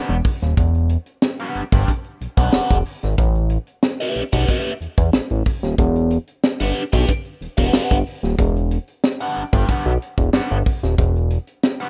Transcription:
Already playing: D4 G4 B4 F#5
0.09 E1, closed hi-hat
0.25 kick, open hi-hat
0.42 D#1, snare, closed hi-hat
0.57 E1, kick, closed hi-hat
0.75 closed hi-hat
0.89 closed hi-hat
1.06 closed hi-hat
1.22 snare
1.40 D4 G4 B4 F#5, closed hi-hat
1.55 G1, closed hi-hat
1.72 G1 D4 G4 B4 G5, kick, closed hi-hat
1.88 kick, closed hi-hat
2.04 closed hi-hat
2.21 B1, closed hi-hat
2.37 B1 D4 G4 B4 F#5, kick, closed hi-hat
2.53 E1 D4 G4 B4 F#5, snare
2.70 E1, kick, closed hi-hat
2.85 open hi-hat
3.03 G#1, snare, closed hi-hat
3.18 A1, kick, closed hi-hat
3.35 closed hi-hat
3.50 closed hi-hat
3.67 closed hi-hat
3.83 snare
4.00 C#4 G4 B4 E5, closed hi-hat
4.16 B1, closed hi-hat
4.33 B1 C#4 G4 B4 F#5, kick, closed hi-hat
4.48 C#4 G4 B4 E5, kick, closed hi-hat
4.65 closed hi-hat
4.81 E2, closed hi-hat
4.98 E2, kick, closed hi-hat
5.13 A1, snare
5.30 A1, closed hi-hat
5.46 kick, open hi-hat
5.63 D#1, snare, closed hi-hat
5.78 E1, kick, closed hi-hat
5.96 closed hi-hat
6.11 closed hi-hat
6.27 closed hi-hat
6.44 snare
6.60 G1 D4 G4 B4 F#5, closed hi-hat
6.76 closed hi-hat
6.93 B1 D4 G4 B4 G5, kick, closed hi-hat
7.09 kick, closed hi-hat
7.25 closed hi-hat
7.41 E1, closed hi-hat
7.57 E1 D4 G4 B4 F#5, kick, closed hi-hat
7.73 G1 D4 G4 B4 F#5, snare
7.91 G1, kick, closed hi-hat
8.07 open hi-hat
8.23 D#1, snare, closed hi-hat
8.39 E1, kick, closed hi-hat
8.56 closed hi-hat
8.71 closed hi-hat
8.88 closed hi-hat
9.04 snare
9.21 D4 G4 B4 F#5, closed hi-hat
9.36 G1, closed hi-hat
9.53 G1 D4 G4 B4 G5, kick, closed hi-hat
9.68 B1 D4 G4 B4 F#5, kick, closed hi-hat
9.85 B1, closed hi-hat
10.02 closed hi-hat
10.18 E1, kick, closed hi-hat
10.33 G1 D4 G4 B4 F#5, snare
10.51 G1, closed hi-hat
10.66 kick, open hi-hat
10.83 D#1, snare, closed hi-hat
10.98 E1, kick, closed hi-hat
11.16 closed hi-hat
11.30 closed hi-hat
11.47 closed hi-hat
11.63 snare
11.80 D4 G4 B4 F#5, closed hi-hat

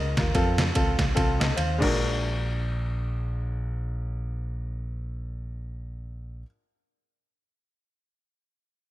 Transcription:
Already playing: C#2 A#4 D#5
0.17 D#2 F4 A#4, kick, snare, ride bell
0.34 F2 C4 F4 A4, kick, ride bell
0.58 snare, ride bell
0.75 C#2 C4 F4 A4, kick, ride bell
0.99 C2, kick, snare, ride bell
1.15 C2 C4 F4 A4, kick, ride bell
1.40 A4 D#5, snare, ride bell
1.56 D#2 C5 F5, ride bell
1.78 A#1 G#3 D4 F#4, kick, crash
1.83 A#4

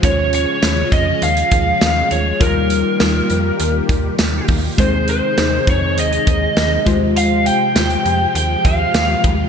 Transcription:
Already playing: G#3 F4
0.02 D#2 C#3 F3 G#3 C#4 F4 G#4 C5 C#5, kick, closed hi-hat
0.10 C#5
0.33 C#5, closed hi-hat
0.62 D#2 G#3 C#4 F4 C#5, snare, closed hi-hat, tambourine
0.92 F2 D#5, kick, closed hi-hat
1.22 D#2 F5, closed hi-hat
1.37 closed hi-hat
1.51 D#2, kick, closed hi-hat
1.81 D#2, snare, closed hi-hat, tambourine
2.11 D#2 C#5, closed hi-hat
2.40 D#2 D#3 F3 G3 A#3 D#4 F4 G4 A#4, kick, closed hi-hat
2.46 G3
2.70 closed hi-hat
2.99 D#2 G3 D#4 F4 A#4, snare, closed hi-hat, tambourine
3.30 F2, closed hi-hat
3.60 D#2, closed hi-hat
3.89 D#2, kick, closed hi-hat
4.18 D#2, snare, closed hi-hat, tambourine
4.48 D#2, kick, open hi-hat
4.78 D#2 C3 G#3 C4 D#4 G#4 C5, kick, closed hi-hat
5.08 C5, closed hi-hat
5.37 D#2 G#3 C4 D#4 C5, snare, closed hi-hat, tambourine
5.67 F2 C#5, kick, closed hi-hat
5.97 D#2 D#5, closed hi-hat
6.13 closed hi-hat
6.27 D#2, kick, closed hi-hat
6.57 D#2, snare, closed hi-hat, tambourine
6.86 D#2 F3 G#3 F4 G4 C5, kick, closed hi-hat
7.17 F5, closed hi-hat
7.46 G5, closed hi-hat
7.75 D#2 G#3 F4 G4 C5, snare, closed hi-hat, tambourine
7.90 closed hi-hat
8.05 F2, closed hi-hat
8.35 D#2 G5, closed hi-hat
8.65 D#2 F5, kick, closed hi-hat
8.94 D#2, snare, closed hi-hat, tambourine
9.24 D#2, kick, closed hi-hat

